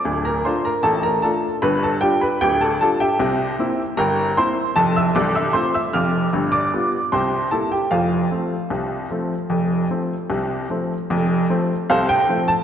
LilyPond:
<<
  \new Staff \with { instrumentName = "Upright piano" } { \time 2/4 \key f \major \tempo 4 = 76 <d'' a'' d'''>16 <bes' bes''>16 <c'' c'''>16 <bes' bes''>16 <a' a''>16 <bes' bes''>16 <a' a''>8 | <b' b''>16 <a' a''>16 <g' g''>16 <b' b''>16 <g' g''>16 <a' a''>16 <a' a''>16 <g' e'' g''>16~ | <g' e'' g''>4 <bes' g'' bes''>8 <c'' c'''>8 | <a' a''>16 <e'' e'''>16 <d'' d'''>16 <e'' e'''>16 <c'' c'''>16 <e'' e'''>16 <f'' d''' f'''>8~ |
<f'' d''' f'''>16 <d'' d'''>8. <c'' g'' c'''>8 <a' a''>16 <g' g''>16 | <f' c'' f''>2~ | <f' c'' f''>4 r4 | r4 <a' c'' f''>16 g''8 a''16 | }
  \new Staff \with { instrumentName = "Upright piano" } { \clef bass \time 2/4 \key f \major <d,, d,>8 <a d' f'>8 <a,, a,>8 <a d' f'>8 | <g,, g,>8 <g d' f'>8 <d,, d,>8 <g d' f'>8 | <c, c>8 <bes c' e'>8 <g,, g,>8 <bes c' e'>8 | <f,, f,>8 <c,, c,>8 <a c' f'>8 <f,, f,>8 |
<g,, g,>8 <g b f'>8 <c, c>8 <g bes e'>8 | <f,, f,>8 <f a c'>8 <c, c>8 <f a c'>8 | <f,, f,>8 <f a c'>8 <c, c>8 <f a c'>8 | <f,, f,>8 <f a c'>8 <c, c>8 <f a c'>8 | }
>>